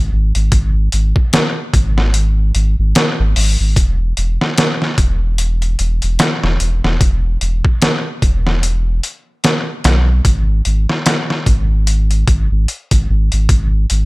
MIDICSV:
0, 0, Header, 1, 3, 480
1, 0, Start_track
1, 0, Tempo, 810811
1, 307, Time_signature, 4, 2, 24, 8
1, 8319, End_track
2, 0, Start_track
2, 0, Title_t, "Sub bass"
2, 0, Program_c, 0, 38
2, 72, Note_on_c, 0, 32, 97
2, 191, Note_off_c, 0, 32, 0
2, 209, Note_on_c, 0, 32, 86
2, 297, Note_off_c, 0, 32, 0
2, 310, Note_on_c, 0, 32, 99
2, 524, Note_off_c, 0, 32, 0
2, 552, Note_on_c, 0, 32, 78
2, 671, Note_off_c, 0, 32, 0
2, 1030, Note_on_c, 0, 32, 103
2, 1489, Note_off_c, 0, 32, 0
2, 1510, Note_on_c, 0, 32, 101
2, 1630, Note_off_c, 0, 32, 0
2, 1651, Note_on_c, 0, 32, 93
2, 1738, Note_off_c, 0, 32, 0
2, 1893, Note_on_c, 0, 32, 104
2, 1979, Note_off_c, 0, 32, 0
2, 1993, Note_on_c, 0, 32, 102
2, 2112, Note_off_c, 0, 32, 0
2, 2131, Note_on_c, 0, 32, 81
2, 2218, Note_off_c, 0, 32, 0
2, 2231, Note_on_c, 0, 28, 94
2, 2445, Note_off_c, 0, 28, 0
2, 2473, Note_on_c, 0, 28, 78
2, 2592, Note_off_c, 0, 28, 0
2, 2950, Note_on_c, 0, 28, 103
2, 3409, Note_off_c, 0, 28, 0
2, 3432, Note_on_c, 0, 28, 101
2, 3551, Note_off_c, 0, 28, 0
2, 3571, Note_on_c, 0, 28, 96
2, 3658, Note_off_c, 0, 28, 0
2, 3809, Note_on_c, 0, 28, 106
2, 3897, Note_off_c, 0, 28, 0
2, 3911, Note_on_c, 0, 28, 101
2, 4031, Note_off_c, 0, 28, 0
2, 4048, Note_on_c, 0, 28, 85
2, 4137, Note_off_c, 0, 28, 0
2, 4150, Note_on_c, 0, 28, 100
2, 4364, Note_off_c, 0, 28, 0
2, 4390, Note_on_c, 0, 28, 76
2, 4511, Note_off_c, 0, 28, 0
2, 4870, Note_on_c, 0, 28, 99
2, 5329, Note_off_c, 0, 28, 0
2, 5829, Note_on_c, 0, 35, 95
2, 6044, Note_off_c, 0, 35, 0
2, 6069, Note_on_c, 0, 32, 99
2, 6284, Note_off_c, 0, 32, 0
2, 6311, Note_on_c, 0, 32, 75
2, 6431, Note_off_c, 0, 32, 0
2, 6789, Note_on_c, 0, 32, 106
2, 7249, Note_off_c, 0, 32, 0
2, 7270, Note_on_c, 0, 32, 98
2, 7391, Note_off_c, 0, 32, 0
2, 7408, Note_on_c, 0, 32, 91
2, 7496, Note_off_c, 0, 32, 0
2, 7648, Note_on_c, 0, 32, 106
2, 7736, Note_off_c, 0, 32, 0
2, 7753, Note_on_c, 0, 32, 100
2, 7872, Note_off_c, 0, 32, 0
2, 7891, Note_on_c, 0, 32, 82
2, 7978, Note_off_c, 0, 32, 0
2, 7989, Note_on_c, 0, 32, 100
2, 8204, Note_off_c, 0, 32, 0
2, 8234, Note_on_c, 0, 32, 78
2, 8319, Note_off_c, 0, 32, 0
2, 8319, End_track
3, 0, Start_track
3, 0, Title_t, "Drums"
3, 207, Note_on_c, 9, 42, 54
3, 267, Note_off_c, 9, 42, 0
3, 307, Note_on_c, 9, 36, 107
3, 307, Note_on_c, 9, 42, 87
3, 366, Note_off_c, 9, 36, 0
3, 366, Note_off_c, 9, 42, 0
3, 547, Note_on_c, 9, 42, 65
3, 606, Note_off_c, 9, 42, 0
3, 685, Note_on_c, 9, 36, 90
3, 745, Note_off_c, 9, 36, 0
3, 787, Note_on_c, 9, 42, 86
3, 791, Note_on_c, 9, 38, 124
3, 846, Note_off_c, 9, 42, 0
3, 850, Note_off_c, 9, 38, 0
3, 1027, Note_on_c, 9, 36, 102
3, 1028, Note_on_c, 9, 42, 71
3, 1086, Note_off_c, 9, 36, 0
3, 1087, Note_off_c, 9, 42, 0
3, 1170, Note_on_c, 9, 38, 47
3, 1230, Note_off_c, 9, 38, 0
3, 1266, Note_on_c, 9, 42, 89
3, 1325, Note_off_c, 9, 42, 0
3, 1507, Note_on_c, 9, 42, 65
3, 1567, Note_off_c, 9, 42, 0
3, 1748, Note_on_c, 9, 42, 91
3, 1752, Note_on_c, 9, 38, 121
3, 1807, Note_off_c, 9, 42, 0
3, 1811, Note_off_c, 9, 38, 0
3, 1990, Note_on_c, 9, 46, 78
3, 2049, Note_off_c, 9, 46, 0
3, 2228, Note_on_c, 9, 36, 109
3, 2230, Note_on_c, 9, 42, 83
3, 2287, Note_off_c, 9, 36, 0
3, 2289, Note_off_c, 9, 42, 0
3, 2469, Note_on_c, 9, 42, 69
3, 2528, Note_off_c, 9, 42, 0
3, 2613, Note_on_c, 9, 38, 54
3, 2672, Note_off_c, 9, 38, 0
3, 2709, Note_on_c, 9, 42, 94
3, 2713, Note_on_c, 9, 38, 116
3, 2768, Note_off_c, 9, 42, 0
3, 2772, Note_off_c, 9, 38, 0
3, 2852, Note_on_c, 9, 38, 42
3, 2911, Note_off_c, 9, 38, 0
3, 2947, Note_on_c, 9, 36, 97
3, 2947, Note_on_c, 9, 42, 71
3, 3006, Note_off_c, 9, 36, 0
3, 3006, Note_off_c, 9, 42, 0
3, 3187, Note_on_c, 9, 42, 86
3, 3246, Note_off_c, 9, 42, 0
3, 3327, Note_on_c, 9, 42, 42
3, 3386, Note_off_c, 9, 42, 0
3, 3427, Note_on_c, 9, 42, 67
3, 3486, Note_off_c, 9, 42, 0
3, 3564, Note_on_c, 9, 42, 43
3, 3623, Note_off_c, 9, 42, 0
3, 3665, Note_on_c, 9, 42, 89
3, 3669, Note_on_c, 9, 38, 114
3, 3724, Note_off_c, 9, 42, 0
3, 3728, Note_off_c, 9, 38, 0
3, 3810, Note_on_c, 9, 38, 50
3, 3869, Note_off_c, 9, 38, 0
3, 3907, Note_on_c, 9, 42, 67
3, 3967, Note_off_c, 9, 42, 0
3, 4052, Note_on_c, 9, 38, 48
3, 4111, Note_off_c, 9, 38, 0
3, 4148, Note_on_c, 9, 36, 108
3, 4148, Note_on_c, 9, 42, 86
3, 4207, Note_off_c, 9, 36, 0
3, 4208, Note_off_c, 9, 42, 0
3, 4388, Note_on_c, 9, 42, 67
3, 4447, Note_off_c, 9, 42, 0
3, 4526, Note_on_c, 9, 36, 95
3, 4585, Note_off_c, 9, 36, 0
3, 4627, Note_on_c, 9, 42, 90
3, 4631, Note_on_c, 9, 38, 115
3, 4686, Note_off_c, 9, 42, 0
3, 4691, Note_off_c, 9, 38, 0
3, 4868, Note_on_c, 9, 36, 94
3, 4869, Note_on_c, 9, 42, 71
3, 4927, Note_off_c, 9, 36, 0
3, 4928, Note_off_c, 9, 42, 0
3, 5012, Note_on_c, 9, 38, 44
3, 5071, Note_off_c, 9, 38, 0
3, 5109, Note_on_c, 9, 42, 84
3, 5169, Note_off_c, 9, 42, 0
3, 5349, Note_on_c, 9, 42, 66
3, 5408, Note_off_c, 9, 42, 0
3, 5587, Note_on_c, 9, 42, 81
3, 5592, Note_on_c, 9, 38, 104
3, 5647, Note_off_c, 9, 42, 0
3, 5651, Note_off_c, 9, 38, 0
3, 5827, Note_on_c, 9, 42, 80
3, 5831, Note_on_c, 9, 38, 98
3, 5886, Note_off_c, 9, 42, 0
3, 5890, Note_off_c, 9, 38, 0
3, 6066, Note_on_c, 9, 36, 112
3, 6067, Note_on_c, 9, 42, 82
3, 6126, Note_off_c, 9, 36, 0
3, 6126, Note_off_c, 9, 42, 0
3, 6306, Note_on_c, 9, 42, 68
3, 6365, Note_off_c, 9, 42, 0
3, 6450, Note_on_c, 9, 38, 50
3, 6509, Note_off_c, 9, 38, 0
3, 6546, Note_on_c, 9, 42, 95
3, 6550, Note_on_c, 9, 38, 114
3, 6605, Note_off_c, 9, 42, 0
3, 6609, Note_off_c, 9, 38, 0
3, 6691, Note_on_c, 9, 38, 46
3, 6750, Note_off_c, 9, 38, 0
3, 6787, Note_on_c, 9, 36, 100
3, 6788, Note_on_c, 9, 42, 66
3, 6846, Note_off_c, 9, 36, 0
3, 6847, Note_off_c, 9, 42, 0
3, 7028, Note_on_c, 9, 42, 88
3, 7087, Note_off_c, 9, 42, 0
3, 7167, Note_on_c, 9, 42, 45
3, 7226, Note_off_c, 9, 42, 0
3, 7267, Note_on_c, 9, 36, 97
3, 7267, Note_on_c, 9, 42, 78
3, 7326, Note_off_c, 9, 36, 0
3, 7326, Note_off_c, 9, 42, 0
3, 7509, Note_on_c, 9, 42, 65
3, 7568, Note_off_c, 9, 42, 0
3, 7644, Note_on_c, 9, 42, 80
3, 7645, Note_on_c, 9, 36, 102
3, 7703, Note_off_c, 9, 42, 0
3, 7704, Note_off_c, 9, 36, 0
3, 7884, Note_on_c, 9, 42, 61
3, 7944, Note_off_c, 9, 42, 0
3, 7986, Note_on_c, 9, 36, 104
3, 7987, Note_on_c, 9, 42, 90
3, 8045, Note_off_c, 9, 36, 0
3, 8046, Note_off_c, 9, 42, 0
3, 8228, Note_on_c, 9, 42, 70
3, 8287, Note_off_c, 9, 42, 0
3, 8319, End_track
0, 0, End_of_file